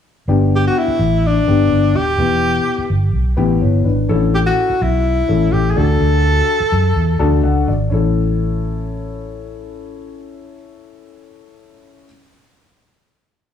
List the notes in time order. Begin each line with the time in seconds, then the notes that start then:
0.28 G1 B3 D4 G4
0.56 G4
0.67 F#4
0.78 E4
0.88 muted fingered electric bass stroke
0.99 A1
1.27 D4
1.47 G1 B3 D4 G4
1.71 G1
1.95 D#1 G4
2.18 E1 B3 E4 G4
2.78 muted fingered electric bass stroke
2.90 G1
3.14 B1
3.37 A1 B3 E4 G4
3.61 G1 E4 C#5
3.85 G#1 D4 B4
4.09 A1 C#4 E4 A4
4.35 G4
4.46 F#4
4.70 muted fingered electric bass stroke
4.82 B1 E4
5.28 A1 C#4 E4 A4
5.53 A1 G4
5.71 G#4
5.76 D2 D4 F#4 A4
6.01 D2
6.60 muted fingered electric bass stroke
6.72 F#2
6.96 E2
7.19 D2 D4 F#4 A4 A5
7.43 C#2 F#5
7.67 G#1 D5
7.90 A1 C#4 E4 A4